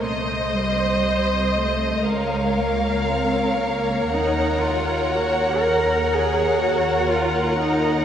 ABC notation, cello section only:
X:1
M:4/4
L:1/8
Q:1/4=60
K:Ebdor
V:1 name="Cello section"
=A, =G,2 A, _A, B, C B, | E F G B A G F E |]